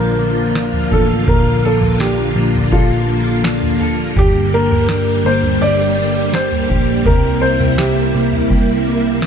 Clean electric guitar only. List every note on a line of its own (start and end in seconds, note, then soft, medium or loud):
0.00 0.19 A#3 medium
0.00 0.55 D4 medium
0.19 1.63 A#3 medium
0.56 1.99 D4 soft
0.92 1.28 A4 medium
1.27 4.16 A#2 medium
1.64 2.36 A#3 soft
2.00 3.44 D4 medium
2.36 3.08 A#3 medium
2.72 3.79 A4 medium
3.08 4.52 A#3 medium
3.44 4.89 D4 soft
3.80 4.17 A4 medium
4.17 7.06 G2 medium
4.17 5.61 G4 medium
4.53 5.25 A#3 soft
4.89 6.32 D4 medium
5.25 5.97 A#3 medium
5.61 6.69 G4 medium
5.98 7.41 A#3 medium
6.33 7.13 D4 soft
6.69 7.06 G4 medium
7.06 9.27 C3 medium
7.06 8.49 G4 medium
7.42 8.14 A#3 soft
7.78 9.22 E4 medium
8.14 8.86 A#3 medium
8.50 9.27 G4 medium
8.87 9.27 A#3 medium
9.23 9.27 E4 medium